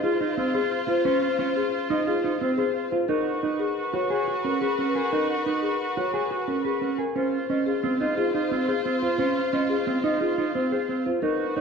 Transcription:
0.00 2.88 F4 medium
0.00 0.20 F4 medium
0.00 0.26 G#4 medium
0.00 2.88 C5 medium
0.04 0.16 F4 medium
0.21 0.43 D#4 medium
0.21 0.33 F4 medium
0.37 0.60 C4 medium
0.37 0.50 F4 medium
0.37 0.60 C5 medium
0.54 0.66 F4 medium
0.54 0.77 G#4 medium
0.54 0.77 C5 medium
0.71 0.83 F4 medium
0.88 1.10 F4 medium
0.88 1.01 F4 medium
0.88 1.04 C5 medium
1.05 1.27 C#4 medium
1.05 1.17 F4 medium
1.05 1.28 C5 medium
1.22 1.34 F4 medium
1.39 1.61 C#4 medium
1.39 1.51 F4 medium
1.56 1.68 F4 medium
1.56 1.78 G#4 medium
1.73 1.85 F4 medium
1.89 2.12 D#4 medium
1.89 2.02 F4 medium
1.89 2.12 D#5 medium
2.07 2.19 F4 medium
2.07 2.29 F4 medium
2.07 2.29 G#4 medium
2.24 2.41 D#4 medium
2.24 2.36 F4 medium
2.41 2.63 C4 medium
2.41 2.53 F4 soft
2.41 2.63 C5 medium
2.57 2.70 F4 soft
2.57 2.80 G#4 medium
2.57 2.80 C5 medium
2.76 2.87 F4 soft
2.91 3.09 F4 medium
2.91 3.14 C5 medium
3.08 3.31 D#4 medium
3.08 6.95 F#4 medium
3.08 3.21 F#4 soft
3.08 3.31 A#4 medium
3.08 6.95 B4 medium
3.26 3.38 F#4 soft
3.43 3.65 D#4 medium
3.43 3.55 F#4 soft
3.59 3.72 F#4 soft
3.59 3.82 G#4 medium
3.77 3.89 F#4 medium
3.94 4.16 F#4 medium
3.94 4.06 F#4 medium
3.94 4.16 C#5 medium
4.10 4.23 F#4 medium
4.10 4.33 G#4 medium
4.28 4.50 F#4 medium
4.28 4.40 F#4 medium
4.45 4.67 C#4 medium
4.45 4.57 F#4 medium
4.45 4.67 A#4 medium
4.61 4.73 F#4 medium
4.61 4.83 G#4 medium
4.61 4.84 B4 medium
4.79 5.01 C#4 medium
4.79 4.90 F#4 medium
4.95 5.07 F#4 medium
4.95 5.17 G#4 medium
4.95 5.11 A#4 medium
5.12 5.34 D#4 medium
5.12 5.24 F#4 medium
5.12 5.34 A#4 medium
5.29 5.41 F#4 medium
5.46 5.68 D#4 medium
5.46 5.58 F#4 medium
5.62 5.75 F#4 medium
5.62 5.85 G#4 medium
5.80 5.92 F#4 medium
5.97 6.19 F#4 medium
5.97 6.09 F#4 medium
5.97 6.19 C#5 medium
6.14 6.26 F#4 medium
6.14 6.36 G#4 medium
6.31 6.53 F#4 medium
6.31 6.43 F#4 soft
6.48 6.70 C#4 medium
6.48 6.60 F#4 soft
6.48 6.70 A#4 medium
6.65 6.77 F#4 soft
6.65 6.87 G#4 medium
6.65 6.87 B4 medium
6.81 7.04 C#4 medium
6.81 6.94 F#4 soft
6.98 7.21 G#4 medium
6.98 7.21 A#4 medium
7.16 7.38 C#4 medium
7.16 11.02 F4 medium
7.16 7.28 F4 soft
7.16 11.02 C5 medium
7.16 7.38 C5 medium
7.33 7.45 F4 soft
7.50 7.72 C#4 medium
7.50 7.62 F4 soft
7.50 7.72 D#5 medium
7.66 7.79 F4 soft
7.66 7.89 G#4 medium
7.83 8.06 C4 medium
7.83 7.95 F4 medium
8.00 8.17 D#4 medium
8.00 8.12 F4 medium
8.00 8.23 D#5 medium
8.16 8.29 F4 medium
8.16 8.34 F4 medium
8.16 8.39 G#4 medium
8.34 8.56 D#4 medium
8.34 8.46 F4 medium
8.51 8.73 C4 medium
8.51 8.63 F4 medium
8.51 8.73 C5 medium
8.68 8.80 F4 medium
8.68 8.90 G#4 medium
8.68 8.90 C5 medium
8.85 9.07 C4 medium
8.85 8.97 F4 medium
9.02 9.24 F4 medium
9.02 9.14 F4 medium
9.02 9.18 C5 medium
9.19 9.41 C#4 medium
9.19 9.31 F4 medium
9.19 9.41 C5 medium
9.36 9.48 F4 medium
9.53 9.75 C#4 medium
9.53 9.65 F4 medium
9.53 9.75 D#5 medium
9.69 9.83 F4 medium
9.69 9.92 G#4 medium
9.87 10.03 C4 medium
9.87 9.99 F4 medium
10.04 10.26 D#4 medium
10.04 10.16 F4 medium
10.04 10.26 D#5 medium
10.21 10.43 F4 medium
10.21 10.33 F4 medium
10.21 10.43 G#4 medium
10.38 10.55 D#4 medium
10.38 10.50 F4 medium
10.54 10.77 C4 medium
10.54 10.66 F4 soft
10.54 10.77 C5 medium
10.71 10.84 F4 soft
10.71 10.94 G#4 medium
10.71 10.94 C5 medium
10.89 11.11 C4 medium
10.89 11.01 F4 soft
11.06 11.22 F4 medium
11.06 11.28 C5 medium
11.22 11.45 D#4 medium
11.22 11.61 F#4 medium
11.22 11.34 F#4 soft
11.22 11.44 A#4 medium
11.22 11.61 B4 medium
11.40 11.52 F#4 soft
11.56 11.61 D#4 medium
11.56 11.61 F#4 soft
11.56 11.61 C#5 medium

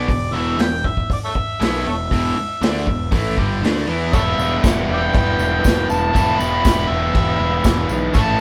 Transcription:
0.00 0.35 D5 loud
0.08 0.32 E1 medium
0.08 0.29 E2 medium
0.08 0.30 B2 medium
0.08 kick loud
0.08 open hi-hat soft
0.32 0.57 E1 medium
0.32 0.58 E2 medium
0.32 0.59 B2 medium
0.32 0.60 E3 loud
0.32 0.63 E5 medium
0.58 0.82 E1 medium
0.58 0.80 E2 medium
0.58 0.80 B2 medium
0.58 0.88 G5 loud
0.58 snare loud
0.58 open hi-hat medium
0.84 1.11 E5 medium
0.84 kick medium
0.97 kick medium
1.10 1.18 D5 medium
1.10 kick medium
1.10 open hi-hat medium
1.25 1.33 A4 medium
1.25 1.32 C#5 medium
1.25 1.83 E5 medium
1.35 muted picked electric bass stroke soft
1.35 muted overdriven electric guitar stroke medium
1.35 kick medium
1.60 1.84 B1 loud
1.60 1.85 B2 medium
1.60 1.85 F#3 medium
1.60 1.86 B3 medium
1.60 snare loud
1.60 open hi-hat medium
1.86 2.10 E1 medium
1.86 2.06 E2 medium
1.86 2.07 B2 medium
1.86 1.94 A4 medium
1.86 1.95 C#5 medium
1.86 3.60 E5 medium
2.11 2.35 E1 medium
2.11 2.36 E2 loud
2.11 2.36 B2 loud
2.11 2.36 E3 loud
2.11 kick medium
2.11 open hi-hat medium
2.37 muted picked electric bass stroke soft
2.37 muted overdriven electric guitar stroke medium
2.61 2.85 D2 loud
2.61 2.86 D3 medium
2.61 2.87 A3 loud
2.61 2.87 D4 loud
2.61 snare loud
2.61 open hi-hat medium
2.87 3.11 E1 medium
2.87 3.07 E2 medium
2.87 3.08 B2 medium
2.87 kick medium
3.12 3.36 A1 medium
3.12 3.37 A2 medium
3.12 3.37 E3 medium
3.12 3.38 A3 medium
3.12 kick loud
3.12 open hi-hat medium
3.37 3.61 G1 medium
3.37 3.62 G2 medium
3.37 3.62 D3 medium
3.37 3.63 G3 medium
3.37 kick medium
3.62 3.86 D2 loud
3.62 3.87 D3 medium
3.62 3.88 A3 medium
3.62 3.89 D4 medium
3.62 snare loud
3.62 open hi-hat medium
3.87 4.11 E2 medium
3.87 4.12 E3 medium
3.87 4.13 B3 medium
3.87 4.14 E4 loud
4.12 4.33 E1 loud
4.12 6.12 E2 loud
4.12 6.13 B2 loud
4.12 6.14 E3 loud
4.12 6.14 G3 loud
4.12 4.22 A4 medium
4.12 4.22 C#5 medium
4.12 4.60 E5 loud
4.12 kick loud
4.12 tambourine medium
4.12 crash medium
4.16 6.15 B3 loud
4.16 6.18 E4 loud
4.38 4.58 E1 medium
4.38 tambourine medium
4.64 4.83 E1 loud
4.64 kick loud
4.64 snare loud
4.64 tambourine medium
4.64 crash medium
4.89 5.09 E1 loud
4.93 5.00 D5 medium
4.93 5.02 E5 medium
4.93 5.15 G5 medium
5.14 5.34 E1 medium
5.14 5.87 G5 medium
5.14 kick loud
5.14 tambourine soft
5.14 crash medium
5.39 5.59 E1 medium
5.39 tambourine medium
5.64 5.84 E1 loud
5.64 kick loud
5.64 snare loud
5.64 tambourine loud
5.64 crash medium
5.90 6.10 E1 medium
5.90 6.41 A5 loud
5.90 tambourine medium
6.13 6.34 E1 loud
6.13 8.13 E2 medium
6.13 8.14 B2 loud
6.13 8.15 E3 loud
6.13 8.15 G3 medium
6.13 kick loud
6.13 tambourine medium
6.13 crash medium
6.18 8.16 B3 loud
6.18 8.19 E4 loud
6.39 6.60 E1 medium
6.39 6.90 B5 loud
6.39 tambourine medium
6.65 6.85 E1 medium
6.65 kick loud
6.65 snare loud
6.65 tambourine loud
6.65 crash medium
6.89 7.10 E1 medium
6.89 7.90 E5 medium
7.14 7.34 E1 medium
7.14 kick loud
7.14 tambourine soft
7.14 crash medium
7.40 7.59 E1 loud
7.64 7.84 E1 medium
7.64 kick loud
7.64 snare loud
7.64 tambourine loud
7.64 crash medium
7.89 8.10 B1 medium
7.89 tambourine medium
8.14 8.34 A1 loud
8.14 8.40 A2 loud
8.14 8.40 E3 loud
8.14 8.40 A3 loud
8.14 8.20 C#5 medium
8.14 8.22 E5 medium
8.14 8.40 A5 loud
8.14 kick loud
8.14 tambourine medium
8.14 crash medium
8.18 8.40 C#4 loud
8.18 8.40 E4 loud

